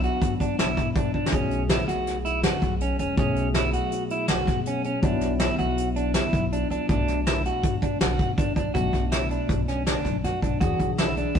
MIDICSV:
0, 0, Header, 1, 5, 480
1, 0, Start_track
1, 0, Tempo, 371287
1, 1718, Time_signature, 5, 2, 24, 8
1, 14728, End_track
2, 0, Start_track
2, 0, Title_t, "Clean electric guitar"
2, 0, Program_c, 0, 27
2, 51, Note_on_c, 0, 66, 69
2, 423, Note_off_c, 0, 66, 0
2, 531, Note_on_c, 0, 62, 68
2, 715, Note_off_c, 0, 62, 0
2, 765, Note_on_c, 0, 64, 75
2, 1139, Note_off_c, 0, 64, 0
2, 1243, Note_on_c, 0, 62, 65
2, 1430, Note_off_c, 0, 62, 0
2, 1484, Note_on_c, 0, 62, 68
2, 1670, Note_off_c, 0, 62, 0
2, 1718, Note_on_c, 0, 61, 85
2, 2094, Note_off_c, 0, 61, 0
2, 2205, Note_on_c, 0, 64, 75
2, 2390, Note_off_c, 0, 64, 0
2, 2428, Note_on_c, 0, 66, 72
2, 2807, Note_off_c, 0, 66, 0
2, 2909, Note_on_c, 0, 64, 71
2, 3099, Note_off_c, 0, 64, 0
2, 3160, Note_on_c, 0, 66, 74
2, 3534, Note_off_c, 0, 66, 0
2, 3641, Note_on_c, 0, 61, 69
2, 3827, Note_off_c, 0, 61, 0
2, 3878, Note_on_c, 0, 61, 69
2, 4065, Note_off_c, 0, 61, 0
2, 4122, Note_on_c, 0, 61, 88
2, 4495, Note_off_c, 0, 61, 0
2, 4597, Note_on_c, 0, 64, 79
2, 4784, Note_off_c, 0, 64, 0
2, 4828, Note_on_c, 0, 66, 73
2, 5206, Note_off_c, 0, 66, 0
2, 5317, Note_on_c, 0, 64, 70
2, 5503, Note_off_c, 0, 64, 0
2, 5556, Note_on_c, 0, 66, 75
2, 5931, Note_off_c, 0, 66, 0
2, 6042, Note_on_c, 0, 61, 72
2, 6226, Note_off_c, 0, 61, 0
2, 6276, Note_on_c, 0, 61, 65
2, 6463, Note_off_c, 0, 61, 0
2, 6509, Note_on_c, 0, 62, 86
2, 6887, Note_off_c, 0, 62, 0
2, 6990, Note_on_c, 0, 64, 79
2, 7179, Note_off_c, 0, 64, 0
2, 7223, Note_on_c, 0, 66, 76
2, 7604, Note_off_c, 0, 66, 0
2, 7708, Note_on_c, 0, 62, 74
2, 7898, Note_off_c, 0, 62, 0
2, 7954, Note_on_c, 0, 64, 75
2, 8331, Note_off_c, 0, 64, 0
2, 8437, Note_on_c, 0, 62, 70
2, 8624, Note_off_c, 0, 62, 0
2, 8677, Note_on_c, 0, 62, 69
2, 8864, Note_off_c, 0, 62, 0
2, 8926, Note_on_c, 0, 62, 89
2, 9299, Note_off_c, 0, 62, 0
2, 9398, Note_on_c, 0, 64, 72
2, 9585, Note_off_c, 0, 64, 0
2, 9644, Note_on_c, 0, 66, 72
2, 10018, Note_off_c, 0, 66, 0
2, 10120, Note_on_c, 0, 62, 73
2, 10307, Note_off_c, 0, 62, 0
2, 10355, Note_on_c, 0, 66, 73
2, 10733, Note_off_c, 0, 66, 0
2, 10835, Note_on_c, 0, 62, 71
2, 11025, Note_off_c, 0, 62, 0
2, 11067, Note_on_c, 0, 62, 68
2, 11260, Note_off_c, 0, 62, 0
2, 11301, Note_on_c, 0, 66, 83
2, 11686, Note_off_c, 0, 66, 0
2, 11787, Note_on_c, 0, 64, 69
2, 11981, Note_off_c, 0, 64, 0
2, 12035, Note_on_c, 0, 62, 68
2, 12415, Note_off_c, 0, 62, 0
2, 12519, Note_on_c, 0, 61, 67
2, 12709, Note_off_c, 0, 61, 0
2, 12755, Note_on_c, 0, 62, 75
2, 13135, Note_off_c, 0, 62, 0
2, 13244, Note_on_c, 0, 66, 68
2, 13433, Note_off_c, 0, 66, 0
2, 13474, Note_on_c, 0, 62, 62
2, 13667, Note_off_c, 0, 62, 0
2, 13709, Note_on_c, 0, 66, 82
2, 14093, Note_off_c, 0, 66, 0
2, 14206, Note_on_c, 0, 64, 75
2, 14395, Note_off_c, 0, 64, 0
2, 14448, Note_on_c, 0, 62, 70
2, 14728, Note_off_c, 0, 62, 0
2, 14728, End_track
3, 0, Start_track
3, 0, Title_t, "Tine electric piano"
3, 0, Program_c, 1, 4
3, 0, Note_on_c, 1, 54, 62
3, 0, Note_on_c, 1, 59, 59
3, 0, Note_on_c, 1, 62, 75
3, 1662, Note_off_c, 1, 54, 0
3, 1668, Note_off_c, 1, 59, 0
3, 1679, Note_off_c, 1, 62, 0
3, 1689, Note_on_c, 1, 47, 68
3, 1705, Note_on_c, 1, 54, 62
3, 1716, Note_on_c, 1, 57, 59
3, 1730, Note_on_c, 1, 68, 73
3, 4051, Note_off_c, 1, 47, 0
3, 4059, Note_off_c, 1, 54, 0
3, 4065, Note_off_c, 1, 57, 0
3, 4072, Note_off_c, 1, 68, 0
3, 4083, Note_on_c, 1, 47, 69
3, 4094, Note_on_c, 1, 54, 62
3, 4112, Note_on_c, 1, 57, 61
3, 4123, Note_on_c, 1, 68, 74
3, 6449, Note_off_c, 1, 47, 0
3, 6454, Note_off_c, 1, 54, 0
3, 6463, Note_off_c, 1, 57, 0
3, 6469, Note_off_c, 1, 68, 0
3, 6488, Note_on_c, 1, 54, 70
3, 6508, Note_on_c, 1, 59, 64
3, 6529, Note_on_c, 1, 64, 79
3, 8854, Note_off_c, 1, 54, 0
3, 8864, Note_off_c, 1, 59, 0
3, 8874, Note_off_c, 1, 64, 0
3, 8900, Note_on_c, 1, 47, 69
3, 8922, Note_on_c, 1, 57, 61
3, 8934, Note_on_c, 1, 62, 78
3, 11263, Note_off_c, 1, 47, 0
3, 11274, Note_off_c, 1, 57, 0
3, 11281, Note_off_c, 1, 62, 0
3, 11294, Note_on_c, 1, 47, 61
3, 11317, Note_on_c, 1, 57, 60
3, 11333, Note_on_c, 1, 62, 68
3, 13664, Note_off_c, 1, 47, 0
3, 13676, Note_off_c, 1, 57, 0
3, 13684, Note_off_c, 1, 62, 0
3, 13705, Note_on_c, 1, 52, 67
3, 13726, Note_on_c, 1, 62, 60
3, 13748, Note_on_c, 1, 68, 71
3, 14728, Note_off_c, 1, 52, 0
3, 14728, Note_off_c, 1, 62, 0
3, 14728, Note_off_c, 1, 68, 0
3, 14728, End_track
4, 0, Start_track
4, 0, Title_t, "Upright bass"
4, 0, Program_c, 2, 32
4, 759, Note_on_c, 2, 35, 82
4, 945, Note_off_c, 2, 35, 0
4, 1002, Note_on_c, 2, 47, 88
4, 1557, Note_off_c, 2, 47, 0
4, 1713, Note_on_c, 2, 35, 95
4, 2270, Note_off_c, 2, 35, 0
4, 2434, Note_on_c, 2, 35, 83
4, 3176, Note_off_c, 2, 35, 0
4, 3387, Note_on_c, 2, 35, 86
4, 3760, Note_off_c, 2, 35, 0
4, 3867, Note_on_c, 2, 28, 84
4, 4055, Note_off_c, 2, 28, 0
4, 4105, Note_on_c, 2, 35, 87
4, 4849, Note_off_c, 2, 35, 0
4, 5545, Note_on_c, 2, 35, 82
4, 5733, Note_off_c, 2, 35, 0
4, 5787, Note_on_c, 2, 47, 92
4, 6345, Note_off_c, 2, 47, 0
4, 6495, Note_on_c, 2, 35, 90
4, 7059, Note_off_c, 2, 35, 0
4, 7223, Note_on_c, 2, 35, 85
4, 7969, Note_off_c, 2, 35, 0
4, 8179, Note_on_c, 2, 35, 92
4, 8556, Note_off_c, 2, 35, 0
4, 8665, Note_on_c, 2, 37, 80
4, 8854, Note_off_c, 2, 37, 0
4, 8910, Note_on_c, 2, 35, 85
4, 9655, Note_off_c, 2, 35, 0
4, 10355, Note_on_c, 2, 35, 81
4, 10541, Note_off_c, 2, 35, 0
4, 10586, Note_on_c, 2, 47, 87
4, 10776, Note_off_c, 2, 47, 0
4, 10832, Note_on_c, 2, 33, 70
4, 11051, Note_off_c, 2, 33, 0
4, 11068, Note_on_c, 2, 35, 77
4, 11289, Note_off_c, 2, 35, 0
4, 11306, Note_on_c, 2, 35, 93
4, 11497, Note_off_c, 2, 35, 0
4, 11542, Note_on_c, 2, 35, 83
4, 12107, Note_off_c, 2, 35, 0
4, 12270, Note_on_c, 2, 35, 83
4, 12832, Note_off_c, 2, 35, 0
4, 12990, Note_on_c, 2, 35, 84
4, 13181, Note_off_c, 2, 35, 0
4, 13236, Note_on_c, 2, 42, 74
4, 13425, Note_off_c, 2, 42, 0
4, 13475, Note_on_c, 2, 35, 73
4, 13664, Note_off_c, 2, 35, 0
4, 13718, Note_on_c, 2, 40, 86
4, 13907, Note_off_c, 2, 40, 0
4, 13957, Note_on_c, 2, 35, 78
4, 14518, Note_off_c, 2, 35, 0
4, 14672, Note_on_c, 2, 40, 94
4, 14728, Note_off_c, 2, 40, 0
4, 14728, End_track
5, 0, Start_track
5, 0, Title_t, "Drums"
5, 40, Note_on_c, 9, 42, 53
5, 170, Note_off_c, 9, 42, 0
5, 280, Note_on_c, 9, 36, 101
5, 283, Note_on_c, 9, 42, 74
5, 409, Note_off_c, 9, 36, 0
5, 413, Note_off_c, 9, 42, 0
5, 520, Note_on_c, 9, 36, 70
5, 526, Note_on_c, 9, 42, 60
5, 649, Note_off_c, 9, 36, 0
5, 655, Note_off_c, 9, 42, 0
5, 763, Note_on_c, 9, 38, 104
5, 763, Note_on_c, 9, 42, 71
5, 892, Note_off_c, 9, 38, 0
5, 892, Note_off_c, 9, 42, 0
5, 999, Note_on_c, 9, 36, 71
5, 1004, Note_on_c, 9, 38, 30
5, 1004, Note_on_c, 9, 42, 52
5, 1128, Note_off_c, 9, 36, 0
5, 1133, Note_off_c, 9, 38, 0
5, 1133, Note_off_c, 9, 42, 0
5, 1236, Note_on_c, 9, 36, 100
5, 1241, Note_on_c, 9, 42, 73
5, 1365, Note_off_c, 9, 36, 0
5, 1370, Note_off_c, 9, 42, 0
5, 1475, Note_on_c, 9, 36, 59
5, 1604, Note_off_c, 9, 36, 0
5, 1631, Note_on_c, 9, 38, 81
5, 1714, Note_on_c, 9, 36, 99
5, 1715, Note_on_c, 9, 42, 78
5, 1761, Note_off_c, 9, 38, 0
5, 1843, Note_off_c, 9, 36, 0
5, 1844, Note_off_c, 9, 42, 0
5, 1952, Note_on_c, 9, 42, 58
5, 2081, Note_off_c, 9, 42, 0
5, 2191, Note_on_c, 9, 38, 99
5, 2191, Note_on_c, 9, 42, 77
5, 2321, Note_off_c, 9, 38, 0
5, 2321, Note_off_c, 9, 42, 0
5, 2438, Note_on_c, 9, 38, 32
5, 2438, Note_on_c, 9, 42, 64
5, 2567, Note_off_c, 9, 38, 0
5, 2567, Note_off_c, 9, 42, 0
5, 2675, Note_on_c, 9, 38, 32
5, 2675, Note_on_c, 9, 42, 80
5, 2804, Note_off_c, 9, 38, 0
5, 2804, Note_off_c, 9, 42, 0
5, 2912, Note_on_c, 9, 42, 61
5, 3041, Note_off_c, 9, 42, 0
5, 3147, Note_on_c, 9, 38, 99
5, 3147, Note_on_c, 9, 42, 77
5, 3277, Note_off_c, 9, 38, 0
5, 3277, Note_off_c, 9, 42, 0
5, 3386, Note_on_c, 9, 36, 69
5, 3387, Note_on_c, 9, 42, 54
5, 3516, Note_off_c, 9, 36, 0
5, 3516, Note_off_c, 9, 42, 0
5, 3624, Note_on_c, 9, 42, 75
5, 3754, Note_off_c, 9, 42, 0
5, 3863, Note_on_c, 9, 42, 58
5, 3993, Note_off_c, 9, 42, 0
5, 4099, Note_on_c, 9, 42, 67
5, 4105, Note_on_c, 9, 36, 96
5, 4229, Note_off_c, 9, 42, 0
5, 4234, Note_off_c, 9, 36, 0
5, 4345, Note_on_c, 9, 42, 56
5, 4474, Note_off_c, 9, 42, 0
5, 4581, Note_on_c, 9, 38, 91
5, 4581, Note_on_c, 9, 42, 72
5, 4710, Note_off_c, 9, 38, 0
5, 4710, Note_off_c, 9, 42, 0
5, 4823, Note_on_c, 9, 42, 59
5, 4952, Note_off_c, 9, 42, 0
5, 5062, Note_on_c, 9, 42, 75
5, 5192, Note_off_c, 9, 42, 0
5, 5302, Note_on_c, 9, 42, 61
5, 5431, Note_off_c, 9, 42, 0
5, 5535, Note_on_c, 9, 38, 101
5, 5535, Note_on_c, 9, 42, 75
5, 5664, Note_off_c, 9, 38, 0
5, 5664, Note_off_c, 9, 42, 0
5, 5785, Note_on_c, 9, 36, 69
5, 5785, Note_on_c, 9, 38, 30
5, 5785, Note_on_c, 9, 42, 58
5, 5914, Note_off_c, 9, 36, 0
5, 5914, Note_off_c, 9, 38, 0
5, 5914, Note_off_c, 9, 42, 0
5, 6019, Note_on_c, 9, 42, 75
5, 6148, Note_off_c, 9, 42, 0
5, 6259, Note_on_c, 9, 42, 63
5, 6388, Note_off_c, 9, 42, 0
5, 6497, Note_on_c, 9, 42, 77
5, 6500, Note_on_c, 9, 36, 97
5, 6626, Note_off_c, 9, 42, 0
5, 6630, Note_off_c, 9, 36, 0
5, 6735, Note_on_c, 9, 38, 32
5, 6735, Note_on_c, 9, 42, 64
5, 6864, Note_off_c, 9, 38, 0
5, 6864, Note_off_c, 9, 42, 0
5, 6975, Note_on_c, 9, 38, 99
5, 6975, Note_on_c, 9, 42, 75
5, 7105, Note_off_c, 9, 38, 0
5, 7105, Note_off_c, 9, 42, 0
5, 7224, Note_on_c, 9, 42, 60
5, 7353, Note_off_c, 9, 42, 0
5, 7467, Note_on_c, 9, 42, 77
5, 7596, Note_off_c, 9, 42, 0
5, 7703, Note_on_c, 9, 42, 57
5, 7833, Note_off_c, 9, 42, 0
5, 7939, Note_on_c, 9, 38, 101
5, 7939, Note_on_c, 9, 42, 74
5, 8068, Note_off_c, 9, 38, 0
5, 8068, Note_off_c, 9, 42, 0
5, 8185, Note_on_c, 9, 36, 68
5, 8188, Note_on_c, 9, 42, 51
5, 8315, Note_off_c, 9, 36, 0
5, 8317, Note_off_c, 9, 42, 0
5, 8434, Note_on_c, 9, 42, 76
5, 8564, Note_off_c, 9, 42, 0
5, 8675, Note_on_c, 9, 42, 56
5, 8804, Note_off_c, 9, 42, 0
5, 8908, Note_on_c, 9, 42, 72
5, 8910, Note_on_c, 9, 36, 97
5, 9037, Note_off_c, 9, 42, 0
5, 9039, Note_off_c, 9, 36, 0
5, 9152, Note_on_c, 9, 38, 33
5, 9152, Note_on_c, 9, 42, 55
5, 9281, Note_off_c, 9, 38, 0
5, 9281, Note_off_c, 9, 42, 0
5, 9395, Note_on_c, 9, 38, 96
5, 9395, Note_on_c, 9, 42, 69
5, 9524, Note_off_c, 9, 38, 0
5, 9524, Note_off_c, 9, 42, 0
5, 9633, Note_on_c, 9, 42, 57
5, 9762, Note_off_c, 9, 42, 0
5, 9871, Note_on_c, 9, 36, 93
5, 9872, Note_on_c, 9, 42, 76
5, 10000, Note_off_c, 9, 36, 0
5, 10002, Note_off_c, 9, 42, 0
5, 10112, Note_on_c, 9, 36, 75
5, 10116, Note_on_c, 9, 42, 64
5, 10241, Note_off_c, 9, 36, 0
5, 10245, Note_off_c, 9, 42, 0
5, 10351, Note_on_c, 9, 38, 105
5, 10351, Note_on_c, 9, 42, 80
5, 10481, Note_off_c, 9, 38, 0
5, 10481, Note_off_c, 9, 42, 0
5, 10592, Note_on_c, 9, 36, 70
5, 10596, Note_on_c, 9, 42, 55
5, 10721, Note_off_c, 9, 36, 0
5, 10725, Note_off_c, 9, 42, 0
5, 10831, Note_on_c, 9, 36, 94
5, 10840, Note_on_c, 9, 42, 83
5, 10961, Note_off_c, 9, 36, 0
5, 10969, Note_off_c, 9, 42, 0
5, 11069, Note_on_c, 9, 36, 74
5, 11074, Note_on_c, 9, 42, 60
5, 11198, Note_off_c, 9, 36, 0
5, 11203, Note_off_c, 9, 42, 0
5, 11309, Note_on_c, 9, 36, 93
5, 11317, Note_on_c, 9, 42, 68
5, 11439, Note_off_c, 9, 36, 0
5, 11446, Note_off_c, 9, 42, 0
5, 11547, Note_on_c, 9, 36, 62
5, 11553, Note_on_c, 9, 38, 30
5, 11553, Note_on_c, 9, 42, 54
5, 11677, Note_off_c, 9, 36, 0
5, 11683, Note_off_c, 9, 38, 0
5, 11683, Note_off_c, 9, 42, 0
5, 11789, Note_on_c, 9, 38, 93
5, 11789, Note_on_c, 9, 42, 70
5, 11918, Note_off_c, 9, 38, 0
5, 11918, Note_off_c, 9, 42, 0
5, 12030, Note_on_c, 9, 42, 54
5, 12159, Note_off_c, 9, 42, 0
5, 12271, Note_on_c, 9, 36, 93
5, 12274, Note_on_c, 9, 42, 68
5, 12400, Note_off_c, 9, 36, 0
5, 12404, Note_off_c, 9, 42, 0
5, 12515, Note_on_c, 9, 38, 30
5, 12515, Note_on_c, 9, 42, 55
5, 12644, Note_off_c, 9, 38, 0
5, 12644, Note_off_c, 9, 42, 0
5, 12755, Note_on_c, 9, 38, 97
5, 12755, Note_on_c, 9, 42, 72
5, 12884, Note_off_c, 9, 38, 0
5, 12884, Note_off_c, 9, 42, 0
5, 12993, Note_on_c, 9, 36, 62
5, 12998, Note_on_c, 9, 38, 29
5, 12998, Note_on_c, 9, 42, 53
5, 13122, Note_off_c, 9, 36, 0
5, 13127, Note_off_c, 9, 38, 0
5, 13127, Note_off_c, 9, 42, 0
5, 13240, Note_on_c, 9, 38, 30
5, 13240, Note_on_c, 9, 42, 73
5, 13370, Note_off_c, 9, 38, 0
5, 13370, Note_off_c, 9, 42, 0
5, 13476, Note_on_c, 9, 36, 71
5, 13485, Note_on_c, 9, 42, 57
5, 13606, Note_off_c, 9, 36, 0
5, 13614, Note_off_c, 9, 42, 0
5, 13717, Note_on_c, 9, 36, 88
5, 13720, Note_on_c, 9, 42, 72
5, 13847, Note_off_c, 9, 36, 0
5, 13850, Note_off_c, 9, 42, 0
5, 13957, Note_on_c, 9, 36, 62
5, 13959, Note_on_c, 9, 42, 57
5, 14086, Note_off_c, 9, 36, 0
5, 14088, Note_off_c, 9, 42, 0
5, 14200, Note_on_c, 9, 38, 94
5, 14200, Note_on_c, 9, 42, 74
5, 14329, Note_off_c, 9, 38, 0
5, 14329, Note_off_c, 9, 42, 0
5, 14437, Note_on_c, 9, 42, 58
5, 14566, Note_off_c, 9, 42, 0
5, 14676, Note_on_c, 9, 36, 89
5, 14676, Note_on_c, 9, 42, 77
5, 14728, Note_off_c, 9, 36, 0
5, 14728, Note_off_c, 9, 42, 0
5, 14728, End_track
0, 0, End_of_file